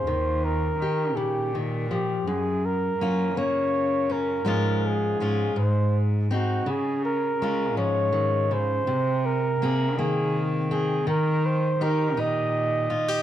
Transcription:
<<
  \new Staff \with { instrumentName = "Flugelhorn" } { \time 6/8 \key des \major \tempo 4. = 54 c''8 bes'4 g'8 r8 g'8 | aes'8 bes'4 des''4 bes'8~ | bes'8 aes'4 c''8 r8 ges'8 | aes'8 bes'4 des''4 c''8~ |
c''8 bes'4 aes'8 r8 aes'8 | bes'8 c''8 bes'8 ees''4. | }
  \new Staff \with { instrumentName = "Steel-string acoustic guitar" } { \time 6/8 \key des \major << { f'4 g'2 | r4 <bes des' f'>8 bes4 des'8 | <f aes des' f'>4 <aes des' f'>4. <c' ees'>8 | r4 <aes des' f'>2~ |
<aes des' f'>4 <bes c' aes'>8 bes4 c'8 | r4 <ees' g'>8 ees'4 f'16 g'16 | } \\ { ees4. des8 ees8 f8 | ges,2. | aes,4. aes,4. | des4. f8 ees8 des8 |
c2. | ees2. | } >> }
  \new Staff \with { instrumentName = "Cello" } { \clef bass \time 6/8 \key des \major ees,4 ees8 bes,4. | ges,4 ges8 des4. | aes,4 aes,8 aes,4. | des4 des8 aes,4. |
c4 c8 ees4. | ees4 ees8 bes,4. | }
>>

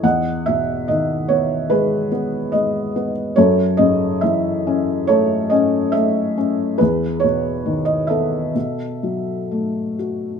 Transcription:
<<
  \new Staff \with { instrumentName = "Felt piano" } { \time 4/4 \key e \major \tempo 4 = 70 << { fis''8 e''8 dis''8 cis''8 b'4 dis''8. r16 | cis''8 dis''8 e''4 cis''8 dis''8 e''4 | b'8 cis''8. dis''16 e''2 r8 | } \\ { dis''2 gis'2 | a'2 a'2 | gis'4. a'2 r8 | } >> }
  \new Staff \with { instrumentName = "Felt piano" } { \clef bass \time 4/4 \key e \major e,8 b,8 dis8 b8 gis8 b8 gis8 b8 | fis,8 cis8 e8 cis'8 a8 cis'8 a8 cis'8 | e,8 b,8 dis8 b8 b,8 fis8 a8 fis'8 | }
>>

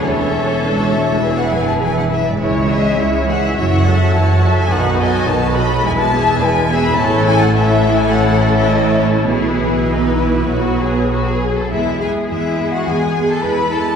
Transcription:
<<
  \new Staff \with { instrumentName = "Violin section" } { \time 4/4 \key e \mixolydian \tempo 4 = 104 e''2~ e''16 fis''16 gis''16 a''16 gis''16 fis''16 e''16 d''16 | \key e \major cis''8 dis''8 e''8 fis''8 e''16 fis''8. a''8. gis''16 | fis''8 gis''8 a''8 b''8 gis''16 a''8. gis''8. b''16 | a''8 gis''16 fis''16 e''8. gis''16 fis''8. e''16 dis''8 cis''8 |
b'2.~ b'8 r8 | e''8 gis''8 e''8. fis''16 gis''8. a''16 b''8 a''8 | }
  \new Staff \with { instrumentName = "Violin section" } { \time 4/4 \key e \mixolydian <a' cis''>2 <gis' b'>4. r8 | \key e \major <e' cis''>8 <gis' e''>8 <e' cis''>8 <gis' e''>8 <fis' cis''>8 <a' e''>8 <fis' cis''>8 <a' e''>8 | <fis' b'>8 <a' dis''>8 <fis' b'>8 <a' dis''>8 b'8 <gis' e''>8 b'8 <gis' e''>8 | <e' a'>4 <e' a'>2. |
<e' gis'>4 dis'8 e'8 fis'8 gis'8 fis'16 gis'8 a'16 | e'8 gis'8 e'8. fis'16 gis'8. a'16 b'8 a'8 | }
  \new Staff \with { instrumentName = "Viola section" } { \time 4/4 \key e \mixolydian << { cis'4 d'4 e'4. r8 | \key e \major e'8 cis'8 e'8 cis'8 e'8 fis'8 e'8 fis'8 | dis'8 fis'8 dis'8 fis'8 e'8 b8 e'8 b8 | cis'4 cis'2. |
b2 b4. r8 | b8 b8 b8 b8 b8 b8 b8 b8 | } \\ { e2 e4. r8 | gis8 e8 gis8 e8 e8 fis8 e8 fis8 | dis8 fis8 dis8 fis8 gis8 e8 gis8 e8 | e4 e2. |
e2 fis4. r8 | gis8 gis8 gis8 gis8 gis8 gis8 gis8 gis8 | } >> }
  \new Staff \with { instrumentName = "Cello section" } { \clef bass \time 4/4 \key e \mixolydian e,4 cis,8 d,8 e,8 fis,8 e,16 fis,8 gis,16 | \key e \major cis,4 cis,4 fis,4 fis,4 | b,4 b,4 e,4 e,4 | a,1 |
b,2 b,4. r8 | gis'2. e'4 | }
  \new Staff \with { instrumentName = "Double bass section" } { \clef bass \time 4/4 \key e \mixolydian e,,2.~ e,,8 r8 | \key e \major cis,4 cis,4 fis,,4 fis,,4 | b,,4 b,,4 e,,4 e,,4 | a,,1 |
b,,2 b,,4. r8 | e,4 e,4 e,4 e,4 | }
>>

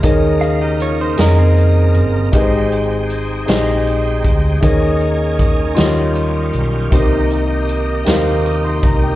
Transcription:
<<
  \new Staff \with { instrumentName = "Grand piano" } { \time 6/8 \key ees \mixolydian \tempo 4. = 52 <ees' aes' bes' des'' ees''>4 r8 <ees' aes' bes' ees''>4 r8 | <ees' g' aes' ces'' c'' ees''>4 r8 <ees' g' aes' c'' ees''>4 r8 | <ees' aes' bes' des'' ees''>4 r8 <f' g' bes' des'' ees''>4 r8 | <ees' g' bes' c'' ees''>4 r8 <ees' g' bes' c'' f''>4 r8 | }
  \new Staff \with { instrumentName = "Grand piano" } { \clef bass \time 6/8 \key ees \mixolydian ees4. r4. | aes,4. r4. | ees4. ees4. | c4. r8 ees'''16 c'''16 bes''16 g''16 | }
  \new Staff \with { instrumentName = "Clean electric guitar" } { \time 6/8 \key ees \mixolydian r8 <aes' f''>16 <g' ees''>16 <f' des''>16 <ees' c''>16 <des' bes'>16 <c' aes'>4~ <c' aes'>16 | r2. | r2. | r2. | }
  \new Staff \with { instrumentName = "Tonewheel organ" } { \time 6/8 \key ees \mixolydian <des bes bes'>2. | <aes c' g''>2. | <bes des' aes'>4. <g des' f'>4. | <bes ees' g'>2. | }
  \new Staff \with { instrumentName = "Tonewheel organ" } { \time 6/8 \key ees \mixolydian ees'2.~ | ees'2.~ | ees'2. | ees2. | }
  \new Staff \with { instrumentName = "Fingered electric bass" } { \clef bass \time 6/8 \key ees \mixolydian r4. f,4 g,,8 | aes,,4. bes,,4 d,8 | ees,4. ees,4 ces,8 | c,4. ees,4 c,8 | }
  \new DrumStaff \with { instrumentName = "Drums" } \drummode { \time 6/8 <hh bd>8 hh8 hh8 <hh sn>8 hh8 hh8 | <hh bd>8 hh8 hh8 <hh sn>8 hh8 <hh bd>8 | <hh bd>8 hh8 <hh bd>8 <hh sn>8 hh8 hh8 | <hh bd>8 hh8 hh8 <hh sn>8 hh8 <hh bd>8 | }
>>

